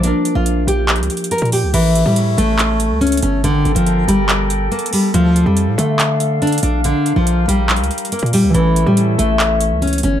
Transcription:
<<
  \new Staff \with { instrumentName = "Flute section" } { \time 4/4 \key a \phrygian \tempo 4 = 141 << { r1 | <cis' e''>1 | <bes' g''>1 | <d' f''>1~ |
<d' f''>1 | <cis' e''>1 | } \\ { r1 | a'1~ | a'1~ | a'1 |
bes'1 | a'1 | } >> }
  \new Staff \with { instrumentName = "Harp" } { \time 4/4 \key a \phrygian <f bes d' bes'>1 | r1 | r1 | r1 |
r1 | <e a cis' a'>1 | }
  \new Staff \with { instrumentName = "Nylon-string guitar" } { \time 4/4 \key a \phrygian d'8. f'8. g'4. bes'8 g'8 | e8. g8. a4. cis'8 cis'8 | d8. f8. g4. bes8 g8 | f8. g8. a4. d'8 d'8 |
d8. f8. g4. bes8 g8 | e8. g8. a4. cis'8 cis'8 | }
  \new Staff \with { instrumentName = "808-style bass" } { \clef bass \time 4/4 \key a \phrygian bes,,16 r8 bes,,8. bes,,8. cis,16 r8. bes,8 cis,16 | a,,8. a,8. a,,4~ a,,16 cis,8. g,,8 | a,,16 g,,16 g,,16 g,,8. g,,4. r4 | d,8. f,8 a,16 d2 bes,,8~ |
bes,,16 r8 bes,,8. bes,,8. cis,16 r8. bes,8 cis,16 | a,,8. a,8. a,,4~ a,,16 cis,8. g,,8 | }
  \new DrumStaff \with { instrumentName = "Drums" } \drummode { \time 4/4 hh8 hh8 hh8 hh8 \tuplet 3/2 { <hc hh>16 hh16 hh16 hh16 hh16 hh16 hh16 hh16 hh16 hho16 r16 r16 } | <cymc hh>8 hh8 hh8 hh8 <hc hh>8 hh8 hh32 hh32 hh32 hh32 hh8 | hh8 hh16 hh16 hh8 hh8 <hc hh>8 hh8 \tuplet 3/2 { hh16 hh16 hh16 hho16 r16 r16 } | hh8 hh8 hh8 hh8 <hc hh>8 hh8 hh32 hh32 hh32 hh32 hh8 |
hh8 hh8 hh8 hh8 \tuplet 3/2 { <hc hh>16 hh16 hh16 hh16 hh16 hh16 hh16 hh16 hh16 hho16 r16 r16 } | hh8 hh8 hh8 hh8 <hc hh>8 hh8 hh32 hh32 hh32 hh32 hh8 | }
>>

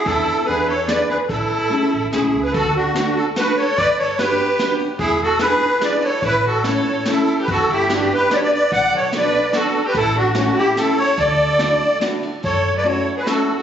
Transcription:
<<
  \new Staff \with { instrumentName = "Accordion" } { \time 3/4 \key a \major \tempo 4 = 145 a'4 b'8 cis''8 d''8 b'8 | a'2 gis'8. b'16 | \key d \major a'8 fis'8 fis'8 a'8 b'8 cis''8 | d''8 cis''8 b'4. r8 |
gis'8 a'8 b'4 d''8 cis''8 | b'8 a'8 cis''4 a'8. b'16 | a'8 g'8 g'8 b'8 d''32 cis''32 d''16 d''8 | fis''8 cis''8 d''4 a'8. b'16 |
a'8 fis'8 fis'8 g'8 a'8 cis''8 | d''2 r4 | \key fis \minor cis''8. d''16 cis''8. b'16 a'8. a'16 | }
  \new Staff \with { instrumentName = "Violin" } { \time 3/4 \key a \major e'4 gis'8 a'8 b'8 gis'8 | e'2 e'8. gis'16 | \key d \major fis'8 d'8 d'8 fis'8 fis'8 a'8 | b'8 a'8 g'4. r8 |
e'8 fis'8 gis'4 b'8 a'8 | e'8 fis'8 a'4 e'8. g'16 | fis'8 e'8 d'8 g'8 b'32 a'32 b'16 b'8 | d''8 a'8 b'4 fis'8. g'16 |
e'8 d'8 cis'8 e'8 e'8 a'8 | a'2 r4 | \key fis \minor a'8. b'16 a'8. gis'16 fis'8. fis'16 | }
  \new Staff \with { instrumentName = "Hollow-body jazz guitar" } { \time 3/4 \key a \major <b d' e' a'>4 <b d' e' gis'>8 r8 <b d' e' gis'>8 r8 | r4 <a cis' e' gis'>8 r8 <a cis' e' gis'>8 r8 | \key d \major r4 <a d' fis' a'>8 r8 <a d' fis' a'>8 r8 | r4 <b d' fis' g'>8 r8 <b d' fis' g'>8 r8 |
r4 <b d' e' gis'>8 r8 <b d' e' gis'>8 r8 | r4 <a cis' e' a'>8 r8 <a cis' e' a'>8 r8 | r4 <b d' fis' g'>8 r8 <b d' fis' g'>8 r8 | r4 <b d' fis' a'>8 r8 <b d' fis' a'>8 r8 |
r4 <a cis' e' a'>8 r8 <a cis' e' a'>8 r8 | r4 <a d' e' fis'>8 r8 <a d' e' fis'>8 r8 | \key fis \minor r4 <a cis' e' fis'>8 r8 <a cis' e' fis'>8 r8 | }
  \new Staff \with { instrumentName = "Upright bass" } { \clef bass \time 3/4 \key a \major e,8 r8 e,2 | a,,8 r4 a,,8 b,,8 cis,8 | \key d \major d,2 r4 | g,,2 r4 |
e,,2 r4 | a,,2 r4 | g,,2 r4 | b,,2 r4 |
a,,2 r4 | d,2 r4 | \key fis \minor fis,2 r4 | }
  \new DrumStaff \with { instrumentName = "Drums" } \drummode { \time 3/4 <hh bd>4 hh4 <hh sn>4 | <hh bd>4 hh4 <hh sn>4 | <bd cymr>4 <cymr sn>4 <cymr sn>8 cymr8 | <bd cymr>4 <cymr sn>4 <cymr sn>8 cymr8 |
<bd cymr>4 <cymr sn>4 <cymr sn>8 cymr8 | <bd cymr>4 <cymr sn>4 <cymr sn>8 cymr8 | <bd cymr>4 <cymr sn>4 <cymr sn>8 cymr8 | <bd cymr>4 <cymr sn>4 <cymr sn>8 cymr8 |
<bd cymr>4 <cymr sn>4 <cymr sn>8 cymr8 | <bd cymr>4 <cymr sn>4 <cymr sn>8 cymr8 | <hh bd>4 hh4 <hh sn>4 | }
>>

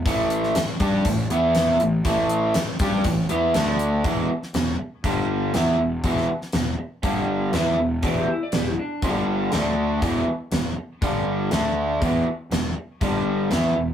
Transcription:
<<
  \new Staff \with { instrumentName = "Electric slide guitar" } { \time 4/4 \key a \major \tempo 4 = 120 r1 | r1 | r1 | r1 |
d''16 g'16 e'16 d''16 g'16 e'16 d'8 r2 | r1 | r1 | }
  \new Staff \with { instrumentName = "Overdriven electric guitar" } { \clef bass \time 4/4 \key a \major <a, e a>4 r8 <g d' g'>8 <a, e>8 <e b e'>4 <a, e>8 | <a, e a>4 r8 <g d' g'>8 <a, e>8 <e b e'>8 <d a d'>4 | <e, b, e>8 r8 <e, b,>8 r8 <g, d g>4 <e b e'>8 <e, b,>8 | <e, b, e>8 r8 <e, b,>8 r8 <g, d g>4 <e b e'>8 <e, b,>8 |
<e, b, e>8 r8 <e, b,>8 r8 <g, d g>4 <d a d'>4 | <e, b, e>8 r8 <e, b,>8 r8 <g, d g>4 <d a d'>4 | <e, b, e>8 r8 <e, b,>8 r8 <g, d g>4 <e b e'>8 <e, b,>8 | }
  \new Staff \with { instrumentName = "Overdriven electric guitar" } { \clef bass \time 4/4 \key a \major <a, e a>4 r8 <g d' g'>8 <a, e>8 <e b e'>4 <a, e>8 | <a, e a>4 r8 <g d' g'>8 <a, e>8 <e b e'>8 <d a d'>4 | <e, b, e>8 r8 <e, b,>8 r8 <g, d g>4 <e b e'>8 <e, b,>8 | <e, b, e>8 r8 <e, b,>8 r8 <g, d g>4 <e b e'>8 <e, b,>8 |
<e, b, e>8 r8 <e, b,>8 r8 <g, d g>4 <d a d'>4 | <e, b, e>8 r8 <e, b,>8 r8 <g, d g>4 <d a d'>4 | <e, b, e>8 r8 <e, b,>8 r8 <g, d g>4 <e b e'>8 <e, b,>8 | }
  \new Staff \with { instrumentName = "Picked electric bass" } { \clef bass \time 4/4 \key a \major a,,4 r8 g,8 a,,8 e,4 a,,8 | a,,4 r8 g,8 a,,8 e,8 d,4 | e,,8 r8 e,,8 r8 g,,4 e,8 e,,8 | e,,8 r8 e,,8 r8 g,,4 e,8 e,,8 |
e,,8 r8 e,,8 r8 g,,4 d,4 | e,,8 r8 e,,8 r8 g,,4 d,4 | e,,8 r8 e,,8 r8 g,,4 e,8 e,,8 | }
  \new DrumStaff \with { instrumentName = "Drums" } \drummode { \time 4/4 <hh bd>8 hh16 sn16 <hh sn>8 <hh bd>8 <hh bd>8 hh8 <hh sn>8 hh8 | <hh bd>8 hh8 <hh sn>8 <hh bd sn>8 <hh bd>8 hh8 <hh sn>8 hh8 | <hh bd>8. sn16 <hh sn>4 <hh bd>4 <hh sn>4 | <hh bd>16 sn8 sn16 <hh sn>4 <hh bd>4 <hh sn>4 |
<hh bd>4 <hh sn>4 <hh bd>4 <hh sn>4 | <hh bd>4 <hh sn>4 <hh bd>4 <hh sn>4 | <hh bd>4 <hh sn>4 <hh bd>4 <hh sn>4 | }
>>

